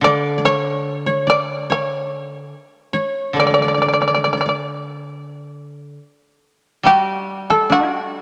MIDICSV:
0, 0, Header, 1, 4, 480
1, 0, Start_track
1, 0, Tempo, 827586
1, 20, Time_signature, 4, 2, 24, 8
1, 2421, Tempo, 863309
1, 2901, Tempo, 910470
1, 3861, Tempo, 842697
1, 4635, End_track
2, 0, Start_track
2, 0, Title_t, "Koto"
2, 0, Program_c, 0, 107
2, 26, Note_on_c, 0, 74, 79
2, 217, Note_off_c, 0, 74, 0
2, 219, Note_on_c, 0, 74, 54
2, 261, Note_on_c, 0, 73, 72
2, 296, Note_off_c, 0, 74, 0
2, 615, Note_off_c, 0, 73, 0
2, 617, Note_on_c, 0, 73, 68
2, 736, Note_on_c, 0, 74, 67
2, 771, Note_off_c, 0, 73, 0
2, 863, Note_off_c, 0, 74, 0
2, 863, Note_on_c, 0, 73, 67
2, 985, Note_off_c, 0, 73, 0
2, 985, Note_on_c, 0, 73, 74
2, 1698, Note_off_c, 0, 73, 0
2, 1701, Note_on_c, 0, 73, 68
2, 1952, Note_on_c, 0, 74, 58
2, 1987, Note_off_c, 0, 73, 0
2, 1990, Note_off_c, 0, 74, 0
2, 1992, Note_on_c, 0, 74, 37
2, 2029, Note_off_c, 0, 74, 0
2, 2031, Note_on_c, 0, 74, 43
2, 2076, Note_off_c, 0, 74, 0
2, 2079, Note_on_c, 0, 74, 37
2, 2109, Note_off_c, 0, 74, 0
2, 2111, Note_on_c, 0, 74, 45
2, 2137, Note_off_c, 0, 74, 0
2, 2139, Note_on_c, 0, 74, 32
2, 2187, Note_off_c, 0, 74, 0
2, 2190, Note_on_c, 0, 74, 39
2, 2235, Note_off_c, 0, 74, 0
2, 2238, Note_on_c, 0, 74, 36
2, 2274, Note_off_c, 0, 74, 0
2, 2277, Note_on_c, 0, 74, 40
2, 2321, Note_off_c, 0, 74, 0
2, 2323, Note_on_c, 0, 74, 34
2, 2369, Note_off_c, 0, 74, 0
2, 2371, Note_on_c, 0, 74, 37
2, 2409, Note_off_c, 0, 74, 0
2, 2411, Note_on_c, 0, 74, 36
2, 2463, Note_off_c, 0, 74, 0
2, 2465, Note_on_c, 0, 74, 39
2, 2506, Note_off_c, 0, 74, 0
2, 2508, Note_on_c, 0, 74, 35
2, 2529, Note_off_c, 0, 74, 0
2, 2531, Note_on_c, 0, 74, 42
2, 2576, Note_off_c, 0, 74, 0
2, 2578, Note_on_c, 0, 74, 44
2, 3439, Note_off_c, 0, 74, 0
2, 3858, Note_on_c, 0, 66, 64
2, 3944, Note_off_c, 0, 66, 0
2, 3944, Note_on_c, 0, 67, 64
2, 4225, Note_on_c, 0, 69, 68
2, 4338, Note_on_c, 0, 66, 64
2, 4372, Note_off_c, 0, 67, 0
2, 4635, Note_off_c, 0, 66, 0
2, 4635, Note_off_c, 0, 69, 0
2, 4635, End_track
3, 0, Start_track
3, 0, Title_t, "Shamisen"
3, 0, Program_c, 1, 106
3, 25, Note_on_c, 1, 74, 88
3, 242, Note_off_c, 1, 74, 0
3, 263, Note_on_c, 1, 73, 90
3, 713, Note_off_c, 1, 73, 0
3, 752, Note_on_c, 1, 74, 90
3, 966, Note_off_c, 1, 74, 0
3, 998, Note_on_c, 1, 73, 76
3, 1933, Note_off_c, 1, 73, 0
3, 1970, Note_on_c, 1, 74, 70
3, 1997, Note_off_c, 1, 74, 0
3, 2011, Note_on_c, 1, 74, 49
3, 2039, Note_off_c, 1, 74, 0
3, 2053, Note_on_c, 1, 74, 57
3, 2081, Note_off_c, 1, 74, 0
3, 2100, Note_on_c, 1, 74, 40
3, 2126, Note_off_c, 1, 74, 0
3, 2136, Note_on_c, 1, 74, 44
3, 2165, Note_off_c, 1, 74, 0
3, 2172, Note_on_c, 1, 74, 42
3, 2204, Note_off_c, 1, 74, 0
3, 2215, Note_on_c, 1, 74, 54
3, 2247, Note_off_c, 1, 74, 0
3, 2253, Note_on_c, 1, 74, 44
3, 2276, Note_off_c, 1, 74, 0
3, 2282, Note_on_c, 1, 74, 47
3, 2322, Note_off_c, 1, 74, 0
3, 2330, Note_on_c, 1, 74, 45
3, 2357, Note_off_c, 1, 74, 0
3, 2364, Note_on_c, 1, 74, 52
3, 2397, Note_off_c, 1, 74, 0
3, 2404, Note_on_c, 1, 74, 43
3, 2446, Note_off_c, 1, 74, 0
3, 2458, Note_on_c, 1, 74, 49
3, 2494, Note_off_c, 1, 74, 0
3, 2507, Note_on_c, 1, 74, 45
3, 2539, Note_off_c, 1, 74, 0
3, 2551, Note_on_c, 1, 74, 51
3, 2583, Note_off_c, 1, 74, 0
3, 2596, Note_on_c, 1, 74, 45
3, 2626, Note_off_c, 1, 74, 0
3, 3864, Note_on_c, 1, 67, 82
3, 4204, Note_off_c, 1, 67, 0
3, 4228, Note_on_c, 1, 69, 75
3, 4338, Note_off_c, 1, 69, 0
3, 4353, Note_on_c, 1, 66, 77
3, 4635, Note_off_c, 1, 66, 0
3, 4635, End_track
4, 0, Start_track
4, 0, Title_t, "Koto"
4, 0, Program_c, 2, 107
4, 7, Note_on_c, 2, 50, 53
4, 1451, Note_off_c, 2, 50, 0
4, 1933, Note_on_c, 2, 50, 46
4, 3383, Note_off_c, 2, 50, 0
4, 3848, Note_on_c, 2, 55, 52
4, 4635, Note_off_c, 2, 55, 0
4, 4635, End_track
0, 0, End_of_file